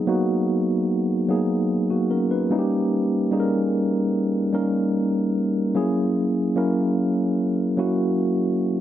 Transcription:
Already playing: F#3 A#3 B3 D#4 G#4
0.07 F#3 A#3 B3 D#4 F#4
1.29 F#3 A#3 B3 D#4 G#4
1.90 A#3 F#4
2.11 C#4 A#4
2.31 D#4 B4
2.50 G3 A#3 C#4 D#4 E4
2.59 G4
3.31 G3 A#3 C#4 D#4 G#4
3.40 A#4
4.53 G3 A#3 C#4 D#4 A#4
5.75 F#3 A#3 C#4 E4 G#4
6.56 F#3 A#3 C#4 E4 A#4
7.77 F#3 A#3 C#4 E4 F#4

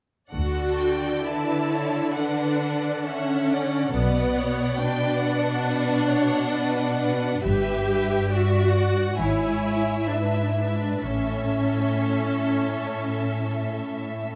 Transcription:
0.32 D2 D3 F#4 A4 D5 F#5
0.79 G5
1.25 E4 B4 A5
1.72 C#5
2.15 D4 B4 D5 F#5
3.05 C#4 A4 E5 F#5
3.52 D5
3.94 B1 B2 B3 B4 D5 F#5
4.39 C#5
4.80 D4 B4 D5 G5
5.22 F#5
5.65 B4
6.10 C#5
6.52 B4 D5
7.00 B4
7.42 G1 G2 G4 B4 E5
7.90 B4
8.32 F#4 D5 E5
8.73 F#5
9.17 G#1 G#2 E4 C#5 E5 G#5
10.06 D4 B4 E5
10.18 E4
10.26 D4
10.35 E4
10.43 D4
10.51 E4 B4
10.59 D4
10.67 E4
10.76 D4
11.01 A1 A2 C#4 A4 E5

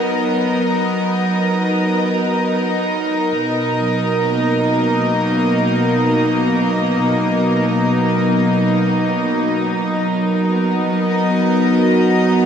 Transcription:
Already playing: F#3 B3 D#4 A#4 D#5
3.39 B2
3.77 F#3
4.26 A#3
10.00 B3 F#4
10.23 A#4
10.51 B3
11.01 D#5

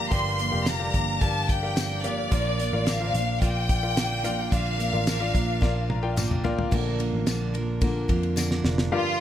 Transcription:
Already playing: F3 A#3 D4 G4 A#4 D5 F5 G5
0.10 G1 G2 D3 F3 A#3 D4 G4 A#4 D5 G5 C6, kick, closed hi-hat
0.38 F3 A#3 D4 A#4, closed hi-hat
0.52 F1 G4 A#4 D5 F5
0.66 G2 D3 F3 A#3 D4 A#4 A#5, snare, closed hi-hat, tambourine
0.79 G4 A#4 D5 F5
0.93 G1 F3 A#3 D4 A#4, kick, closed hi-hat
1.21 G1 F3 A#3 D4 G4 A#4 D5 F5 A5, kick, closed hi-hat
1.49 G5, kick, closed hi-hat
1.63 G4 A#4 D5 F5
1.76 G2 D3 F3 A#3 D4 A#4, snare, closed hi-hat, tambourine
2.04 F3 A#3 D4 G4 A#4 D5 F5, snare, closed hi-hat
2.31 A#1 A#2 D3 F3 A#3 D4 F4 A#4 D5 F5, kick, closed hi-hat
2.59 F3 A#3 D4 A#4, closed hi-hat
2.73 A1 F4 A#4 D5 F5
2.86 A#2 D3 F3 A#3 D4 A#4 F5, snare, closed hi-hat, tambourine
3.00 F4 A#4 C5 F5
3.07 D5
3.14 A#1 F3 A#3 D4 A#4, closed hi-hat
3.41 A#1 F3 A#3 D4 F4 A#4 D5 F5 G5, kick, closed hi-hat
3.69 kick, closed hi-hat
3.83 F4 A#4 D5 F5
3.96 A#2 D3 F3 A#3 D4 A#4, snare, closed hi-hat, tambourine
4.24 F3 A#3 D4 F4 A#4 D5 F5, closed hi-hat
4.52 A#1 A#2 D3 F3 A#3 D4 F4 A#4 D5 F5, kick, closed hi-hat
4.79 F3 A#3 D4 A#4, closed hi-hat
4.93 A1 F4 A#4 D5 F5
5.07 A#2 D3 F3 A#3 D4 A#4, snare, closed hi-hat, tambourine
5.20 F4 A#4 D5 F5
5.33 A#1 F3 A#3 D4 A#4, kick, closed hi-hat
5.61 A#1 F3 A#3 D4 F4 A#4 D5 F5, kick, snare
5.89 A#5, high tom
6.03 F4 A#4 D5 G5
6.16 A#2 D3 F3 A#3 D4 A#4 F5, mid tom, tambourine
6.31 mid tom
6.44 F3 A#3 D4 F4 A#4 D5 F5, floor tom
6.59 floor tom
6.71 A#1 A#2 D3 F3 A#3 D4 A#4, kick, crash
6.99 F3 A#3 D4 A#4, ride
7.13 A1
7.26 A#1 A#2 D3 F3 A#3 D4 A#4, snare, ride, tambourine
7.54 F3 A#3 D4 A#4, ride
7.81 D3 F3 A#3 D4 A#4, kick, ride
8.08 F2 F3 A#3 D4 A#4, kick, ride
8.23 ride
8.36 A#2 D3 F3 A#3 D4 A#4, snare, tambourine
8.51 snare
8.64 F1, snare
8.78 snare
8.92 G2 F4 G4 A#4 D5 F5

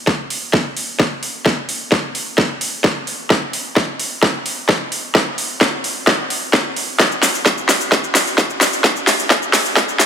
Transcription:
0.07 kick, snare
0.30 open hi-hat
0.53 kick, snare
0.77 open hi-hat
1.00 kick, snare
1.23 open hi-hat
1.46 kick, snare
1.69 open hi-hat
1.92 kick, snare
2.15 open hi-hat
2.38 kick, snare
2.61 open hi-hat
2.84 kick, snare
3.07 open hi-hat
3.30 kick, snare
3.53 open hi-hat
3.76 kick, snare
4.00 open hi-hat
4.23 kick, snare
4.46 open hi-hat
4.69 kick, snare
4.92 open hi-hat
5.15 kick, snare
5.38 open hi-hat
5.61 kick, snare
5.84 open hi-hat
6.07 kick, snare
6.30 open hi-hat
6.53 kick, snare
6.76 open hi-hat
7.00 kick, snare, shaker
7.12 shaker
7.23 snare, open hi-hat, shaker
7.35 shaker
7.46 kick, snare, shaker
7.58 shaker
7.69 snare, open hi-hat, shaker
7.81 shaker
7.92 kick, snare, shaker
8.04 shaker
8.15 snare, open hi-hat, shaker
8.27 shaker
8.38 kick, snare, shaker
8.50 shaker
8.61 snare, open hi-hat, shaker
8.73 shaker
8.84 kick, snare, shaker
8.96 shaker
9.07 snare, open hi-hat, shaker
9.19 shaker
9.30 kick, snare, shaker
9.42 shaker
9.53 snare, open hi-hat, shaker
9.65 shaker
9.76 kick, snare, shaker
9.89 shaker
10.00 snare, open hi-hat, shaker

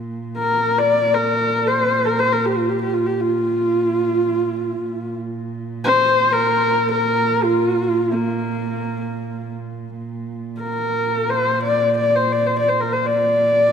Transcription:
Already playing: A#2
0.38 A#4
0.78 D5
1.14 A#4
1.67 C5
2.05 A#4
2.19 C5
2.32 A#4
2.46 G4
2.57 F4
2.69 G4
2.81 G4
2.93 F4
3.06 G4
3.21 F4
4.85 A#2
5.84 C5
6.32 A#4
6.92 A#4
7.44 F4
8.12 A#3
9.98 A#2
10.61 A#4
11.30 C5
11.64 D5
11.98 D5
12.16 C5
12.32 D5
12.46 C5
12.59 D5
12.69 C5
12.80 A#4
12.92 C5
13.06 D5

